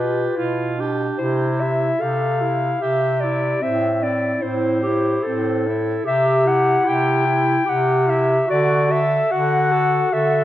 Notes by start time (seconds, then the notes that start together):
Already playing: B2 F4 G4 B4
0.35 B2 E4 F4
0.78 D4 G4
1.18 C3 E4 G4 C5
1.60 E4 E5
2.00 C3 G4 A4 F5
2.41 E4
2.80 C3 G4 E5
3.20 E4 D5
3.62 A2 C4 E5
4.02 E4 D5
4.41 A2 C4 E4 C5
4.82 G4
4.87 E4
5.23 A2 C4 A4
5.67 E4
6.05 C3 G4 E5
6.46 E4 F#5
6.84 C3 E4 G4 G5
7.25 E4
7.65 C3 G4 F#5
8.07 E4 E5
8.48 D3 F#4 D5
8.90 A4 E5
9.31 D3 F#4 F#5
9.72 A4
10.12 D3 F#4 A4 E5